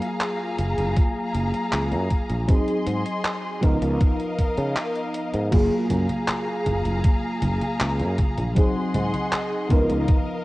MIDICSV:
0, 0, Header, 1, 6, 480
1, 0, Start_track
1, 0, Key_signature, 6, "major"
1, 0, Tempo, 759494
1, 1573, Time_signature, 4, 2, 24, 8
1, 6601, End_track
2, 0, Start_track
2, 0, Title_t, "String section"
2, 0, Program_c, 0, 48
2, 0, Note_on_c, 0, 68, 82
2, 0, Note_on_c, 0, 77, 76
2, 0, Note_on_c, 0, 82, 92
2, 1548, Note_off_c, 0, 77, 0
2, 1553, Note_off_c, 0, 82, 0
2, 1554, Note_off_c, 0, 68, 0
2, 1573, Note_on_c, 0, 68, 78
2, 1573, Note_on_c, 0, 75, 70
2, 1573, Note_on_c, 0, 84, 84
2, 2286, Note_off_c, 0, 68, 0
2, 2286, Note_off_c, 0, 75, 0
2, 2286, Note_off_c, 0, 84, 0
2, 2294, Note_on_c, 0, 77, 79
2, 2295, Note_on_c, 0, 70, 84
2, 2295, Note_on_c, 0, 75, 79
2, 3482, Note_off_c, 0, 70, 0
2, 3482, Note_off_c, 0, 75, 0
2, 3482, Note_off_c, 0, 77, 0
2, 3492, Note_on_c, 0, 82, 92
2, 3493, Note_on_c, 0, 68, 83
2, 3493, Note_on_c, 0, 77, 76
2, 5393, Note_off_c, 0, 82, 0
2, 5394, Note_off_c, 0, 68, 0
2, 5394, Note_off_c, 0, 77, 0
2, 5413, Note_on_c, 0, 84, 89
2, 5414, Note_on_c, 0, 68, 79
2, 5414, Note_on_c, 0, 75, 77
2, 5415, Note_on_c, 0, 78, 71
2, 6126, Note_off_c, 0, 68, 0
2, 6126, Note_off_c, 0, 84, 0
2, 6127, Note_off_c, 0, 78, 0
2, 6136, Note_on_c, 0, 70, 86
2, 6137, Note_on_c, 0, 77, 80
2, 6601, Note_off_c, 0, 70, 0
2, 6601, Note_off_c, 0, 75, 0
2, 6601, Note_off_c, 0, 77, 0
2, 6601, End_track
3, 0, Start_track
3, 0, Title_t, "FM electric piano"
3, 0, Program_c, 1, 5
3, 0, Control_c, 1, 64, 127
3, 0, Note_on_c, 1, 54, 91
3, 0, Note_on_c, 1, 58, 83
3, 0, Note_on_c, 1, 65, 84
3, 0, Note_on_c, 1, 68, 99
3, 1519, Note_off_c, 1, 54, 0
3, 1523, Note_off_c, 1, 58, 0
3, 1525, Note_off_c, 1, 65, 0
3, 1529, Note_off_c, 1, 68, 0
3, 1561, Note_on_c, 1, 54, 80
3, 1568, Note_on_c, 1, 60, 73
3, 1574, Note_on_c, 1, 63, 71
3, 1580, Note_on_c, 1, 68, 87
3, 1582, Control_c, 1, 64, 0
3, 1698, Control_c, 1, 64, 127
3, 2240, Note_off_c, 1, 54, 0
3, 2243, Note_off_c, 1, 60, 0
3, 2246, Note_off_c, 1, 63, 0
3, 2249, Note_off_c, 1, 68, 0
3, 2282, Note_on_c, 1, 53, 91
3, 2289, Note_on_c, 1, 59, 83
3, 2296, Note_on_c, 1, 63, 86
3, 2302, Control_c, 1, 64, 0
3, 2302, Note_on_c, 1, 70, 98
3, 2420, Control_c, 1, 64, 127
3, 3440, Note_off_c, 1, 53, 0
3, 3444, Note_off_c, 1, 59, 0
3, 3447, Note_off_c, 1, 63, 0
3, 3450, Note_off_c, 1, 70, 0
3, 3484, Note_on_c, 1, 54, 91
3, 3490, Note_on_c, 1, 58, 84
3, 3496, Note_on_c, 1, 65, 82
3, 3500, Control_c, 1, 64, 0
3, 3502, Note_on_c, 1, 68, 100
3, 3621, Control_c, 1, 64, 127
3, 5361, Note_off_c, 1, 54, 0
3, 5364, Note_off_c, 1, 58, 0
3, 5367, Note_off_c, 1, 65, 0
3, 5370, Note_off_c, 1, 68, 0
3, 5402, Note_on_c, 1, 54, 80
3, 5410, Note_on_c, 1, 60, 74
3, 5415, Note_on_c, 1, 63, 74
3, 5421, Control_c, 1, 64, 0
3, 5422, Note_on_c, 1, 68, 87
3, 5522, Control_c, 1, 64, 127
3, 6080, Note_off_c, 1, 54, 0
3, 6084, Note_off_c, 1, 60, 0
3, 6087, Note_off_c, 1, 63, 0
3, 6090, Note_off_c, 1, 68, 0
3, 6123, Note_on_c, 1, 53, 90
3, 6130, Note_on_c, 1, 59, 82
3, 6135, Note_on_c, 1, 63, 85
3, 6142, Control_c, 1, 64, 0
3, 6142, Note_on_c, 1, 70, 101
3, 6250, Control_c, 1, 64, 127
3, 6601, Note_off_c, 1, 53, 0
3, 6601, Note_off_c, 1, 59, 0
3, 6601, Note_off_c, 1, 63, 0
3, 6601, Note_off_c, 1, 70, 0
3, 6601, End_track
4, 0, Start_track
4, 0, Title_t, "Fretless electric bass"
4, 0, Program_c, 2, 35
4, 372, Note_on_c, 2, 30, 89
4, 473, Note_off_c, 2, 30, 0
4, 494, Note_on_c, 2, 30, 97
4, 592, Note_off_c, 2, 30, 0
4, 851, Note_on_c, 2, 30, 93
4, 952, Note_off_c, 2, 30, 0
4, 1091, Note_on_c, 2, 37, 97
4, 1213, Note_on_c, 2, 42, 91
4, 1223, Note_off_c, 2, 37, 0
4, 1312, Note_off_c, 2, 42, 0
4, 1455, Note_on_c, 2, 34, 79
4, 1553, Note_off_c, 2, 34, 0
4, 1813, Note_on_c, 2, 44, 90
4, 1913, Note_off_c, 2, 44, 0
4, 2294, Note_on_c, 2, 37, 89
4, 2394, Note_off_c, 2, 37, 0
4, 2413, Note_on_c, 2, 37, 99
4, 2512, Note_off_c, 2, 37, 0
4, 2894, Note_on_c, 2, 49, 90
4, 2992, Note_off_c, 2, 49, 0
4, 3376, Note_on_c, 2, 44, 81
4, 3473, Note_off_c, 2, 44, 0
4, 3492, Note_on_c, 2, 30, 99
4, 3593, Note_off_c, 2, 30, 0
4, 3732, Note_on_c, 2, 42, 91
4, 3833, Note_off_c, 2, 42, 0
4, 4213, Note_on_c, 2, 30, 90
4, 4313, Note_off_c, 2, 30, 0
4, 4337, Note_on_c, 2, 30, 100
4, 4434, Note_off_c, 2, 30, 0
4, 4697, Note_on_c, 2, 30, 94
4, 4795, Note_off_c, 2, 30, 0
4, 4936, Note_on_c, 2, 37, 98
4, 5056, Note_on_c, 2, 42, 93
4, 5065, Note_off_c, 2, 37, 0
4, 5153, Note_off_c, 2, 42, 0
4, 5296, Note_on_c, 2, 34, 81
4, 5393, Note_off_c, 2, 34, 0
4, 5655, Note_on_c, 2, 44, 90
4, 5754, Note_off_c, 2, 44, 0
4, 6133, Note_on_c, 2, 37, 89
4, 6233, Note_off_c, 2, 37, 0
4, 6255, Note_on_c, 2, 37, 101
4, 6353, Note_off_c, 2, 37, 0
4, 6601, End_track
5, 0, Start_track
5, 0, Title_t, "Muted fretless electric bass strokes"
5, 973, Note_on_c, 9, 29, 44
5, 1037, Note_off_c, 9, 29, 0
5, 4817, Note_on_c, 9, 29, 42
5, 4880, Note_off_c, 9, 29, 0
5, 6601, End_track
6, 0, Start_track
6, 0, Title_t, "Drums"
6, 13, Note_on_c, 9, 42, 50
6, 77, Note_off_c, 9, 42, 0
6, 131, Note_on_c, 9, 39, 106
6, 131, Note_on_c, 9, 42, 75
6, 195, Note_off_c, 9, 39, 0
6, 195, Note_off_c, 9, 42, 0
6, 370, Note_on_c, 9, 42, 78
6, 434, Note_off_c, 9, 42, 0
6, 492, Note_on_c, 9, 42, 51
6, 556, Note_off_c, 9, 42, 0
6, 610, Note_on_c, 9, 42, 74
6, 612, Note_on_c, 9, 36, 107
6, 673, Note_off_c, 9, 42, 0
6, 675, Note_off_c, 9, 36, 0
6, 850, Note_on_c, 9, 42, 75
6, 913, Note_off_c, 9, 42, 0
6, 972, Note_on_c, 9, 42, 50
6, 1035, Note_off_c, 9, 42, 0
6, 1090, Note_on_c, 9, 39, 107
6, 1090, Note_on_c, 9, 42, 72
6, 1153, Note_off_c, 9, 39, 0
6, 1153, Note_off_c, 9, 42, 0
6, 1211, Note_on_c, 9, 42, 33
6, 1274, Note_off_c, 9, 42, 0
6, 1330, Note_on_c, 9, 42, 75
6, 1332, Note_on_c, 9, 36, 56
6, 1393, Note_off_c, 9, 42, 0
6, 1396, Note_off_c, 9, 36, 0
6, 1451, Note_on_c, 9, 42, 50
6, 1515, Note_off_c, 9, 42, 0
6, 1571, Note_on_c, 9, 42, 82
6, 1572, Note_on_c, 9, 36, 115
6, 1634, Note_off_c, 9, 42, 0
6, 1636, Note_off_c, 9, 36, 0
6, 1693, Note_on_c, 9, 42, 37
6, 1756, Note_off_c, 9, 42, 0
6, 1811, Note_on_c, 9, 42, 82
6, 1874, Note_off_c, 9, 42, 0
6, 1932, Note_on_c, 9, 42, 51
6, 1995, Note_off_c, 9, 42, 0
6, 2053, Note_on_c, 9, 39, 113
6, 2053, Note_on_c, 9, 42, 76
6, 2116, Note_off_c, 9, 39, 0
6, 2116, Note_off_c, 9, 42, 0
6, 2292, Note_on_c, 9, 42, 82
6, 2293, Note_on_c, 9, 36, 101
6, 2355, Note_off_c, 9, 42, 0
6, 2356, Note_off_c, 9, 36, 0
6, 2413, Note_on_c, 9, 42, 51
6, 2476, Note_off_c, 9, 42, 0
6, 2531, Note_on_c, 9, 42, 79
6, 2533, Note_on_c, 9, 36, 115
6, 2595, Note_off_c, 9, 42, 0
6, 2596, Note_off_c, 9, 36, 0
6, 2653, Note_on_c, 9, 42, 36
6, 2716, Note_off_c, 9, 42, 0
6, 2772, Note_on_c, 9, 42, 79
6, 2773, Note_on_c, 9, 36, 59
6, 2835, Note_off_c, 9, 42, 0
6, 2836, Note_off_c, 9, 36, 0
6, 2891, Note_on_c, 9, 42, 51
6, 2955, Note_off_c, 9, 42, 0
6, 3010, Note_on_c, 9, 39, 110
6, 3010, Note_on_c, 9, 42, 75
6, 3074, Note_off_c, 9, 39, 0
6, 3074, Note_off_c, 9, 42, 0
6, 3131, Note_on_c, 9, 42, 35
6, 3194, Note_off_c, 9, 42, 0
6, 3250, Note_on_c, 9, 42, 81
6, 3313, Note_off_c, 9, 42, 0
6, 3372, Note_on_c, 9, 42, 54
6, 3435, Note_off_c, 9, 42, 0
6, 3490, Note_on_c, 9, 42, 83
6, 3490, Note_on_c, 9, 49, 101
6, 3490, Note_on_c, 9, 63, 31
6, 3493, Note_on_c, 9, 36, 118
6, 3553, Note_off_c, 9, 42, 0
6, 3553, Note_off_c, 9, 49, 0
6, 3553, Note_off_c, 9, 63, 0
6, 3556, Note_off_c, 9, 36, 0
6, 3730, Note_on_c, 9, 42, 85
6, 3730, Note_on_c, 9, 63, 67
6, 3793, Note_off_c, 9, 42, 0
6, 3793, Note_off_c, 9, 63, 0
6, 3852, Note_on_c, 9, 42, 53
6, 3852, Note_on_c, 9, 63, 36
6, 3915, Note_off_c, 9, 42, 0
6, 3915, Note_off_c, 9, 63, 0
6, 3970, Note_on_c, 9, 39, 118
6, 3970, Note_on_c, 9, 42, 81
6, 3970, Note_on_c, 9, 63, 28
6, 4033, Note_off_c, 9, 39, 0
6, 4033, Note_off_c, 9, 42, 0
6, 4033, Note_off_c, 9, 63, 0
6, 4211, Note_on_c, 9, 42, 84
6, 4211, Note_on_c, 9, 63, 70
6, 4274, Note_off_c, 9, 42, 0
6, 4274, Note_off_c, 9, 63, 0
6, 4332, Note_on_c, 9, 42, 57
6, 4332, Note_on_c, 9, 63, 39
6, 4395, Note_off_c, 9, 42, 0
6, 4395, Note_off_c, 9, 63, 0
6, 4450, Note_on_c, 9, 42, 84
6, 4450, Note_on_c, 9, 63, 30
6, 4453, Note_on_c, 9, 36, 115
6, 4514, Note_off_c, 9, 42, 0
6, 4514, Note_off_c, 9, 63, 0
6, 4516, Note_off_c, 9, 36, 0
6, 4689, Note_on_c, 9, 42, 82
6, 4689, Note_on_c, 9, 63, 68
6, 4753, Note_off_c, 9, 42, 0
6, 4753, Note_off_c, 9, 63, 0
6, 4812, Note_on_c, 9, 42, 53
6, 4812, Note_on_c, 9, 63, 36
6, 4875, Note_off_c, 9, 42, 0
6, 4875, Note_off_c, 9, 63, 0
6, 4931, Note_on_c, 9, 39, 120
6, 4931, Note_on_c, 9, 42, 83
6, 4931, Note_on_c, 9, 63, 28
6, 4994, Note_off_c, 9, 39, 0
6, 4994, Note_off_c, 9, 42, 0
6, 4994, Note_off_c, 9, 63, 0
6, 5052, Note_on_c, 9, 42, 38
6, 5115, Note_off_c, 9, 42, 0
6, 5170, Note_on_c, 9, 42, 82
6, 5170, Note_on_c, 9, 63, 68
6, 5173, Note_on_c, 9, 36, 63
6, 5233, Note_off_c, 9, 42, 0
6, 5233, Note_off_c, 9, 63, 0
6, 5237, Note_off_c, 9, 36, 0
6, 5292, Note_on_c, 9, 42, 54
6, 5292, Note_on_c, 9, 63, 38
6, 5356, Note_off_c, 9, 42, 0
6, 5356, Note_off_c, 9, 63, 0
6, 5411, Note_on_c, 9, 42, 87
6, 5411, Note_on_c, 9, 63, 29
6, 5414, Note_on_c, 9, 36, 119
6, 5474, Note_off_c, 9, 42, 0
6, 5474, Note_off_c, 9, 63, 0
6, 5477, Note_off_c, 9, 36, 0
6, 5651, Note_on_c, 9, 42, 82
6, 5651, Note_on_c, 9, 63, 67
6, 5714, Note_off_c, 9, 42, 0
6, 5714, Note_off_c, 9, 63, 0
6, 5774, Note_on_c, 9, 42, 52
6, 5774, Note_on_c, 9, 63, 37
6, 5837, Note_off_c, 9, 42, 0
6, 5837, Note_off_c, 9, 63, 0
6, 5892, Note_on_c, 9, 39, 120
6, 5892, Note_on_c, 9, 42, 82
6, 5892, Note_on_c, 9, 63, 27
6, 5955, Note_off_c, 9, 39, 0
6, 5955, Note_off_c, 9, 42, 0
6, 5955, Note_off_c, 9, 63, 0
6, 6132, Note_on_c, 9, 42, 85
6, 6132, Note_on_c, 9, 63, 65
6, 6133, Note_on_c, 9, 36, 113
6, 6195, Note_off_c, 9, 42, 0
6, 6195, Note_off_c, 9, 63, 0
6, 6197, Note_off_c, 9, 36, 0
6, 6254, Note_on_c, 9, 42, 55
6, 6254, Note_on_c, 9, 63, 38
6, 6317, Note_off_c, 9, 42, 0
6, 6317, Note_off_c, 9, 63, 0
6, 6371, Note_on_c, 9, 42, 80
6, 6371, Note_on_c, 9, 63, 28
6, 6373, Note_on_c, 9, 36, 121
6, 6434, Note_off_c, 9, 42, 0
6, 6434, Note_off_c, 9, 63, 0
6, 6437, Note_off_c, 9, 36, 0
6, 6601, End_track
0, 0, End_of_file